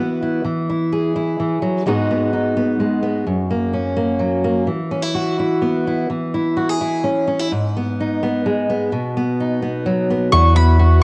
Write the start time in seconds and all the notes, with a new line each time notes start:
Already playing: E3 B3 E4 F#4
0.22 E4
0.44 E3
0.69 E4
0.92 G#4
1.16 E4
1.40 E3
1.62 F#3
1.86 G#2 G#3 B3 D#4 F#4
2.11 B3
2.33 D#4
2.57 B3
2.80 G#3
3.03 B3
3.27 F#2
3.51 A#3
3.74 C#4
3.97 A#3
4.19 F#3
4.44 A#3
4.67 E3
4.91 C#4
5.02 E4
5.15 F#4
5.39 E4
5.62 B3
5.87 E4
6.10 E3
6.34 E4
6.57 F#4
6.69 G#4
6.81 E4
7.04 C#4
7.27 C#4
7.39 E4
7.52 G#2
7.77 B3
8.00 D#4
8.23 B3
8.46 G#3
8.70 B3
8.92 B2
9.17 B3
9.40 D#4
9.62 B3
9.86 F#3
10.10 B3
10.32 E2 E3 B3 E4 F#4 C#6
10.56 E4 B5
10.79 F#4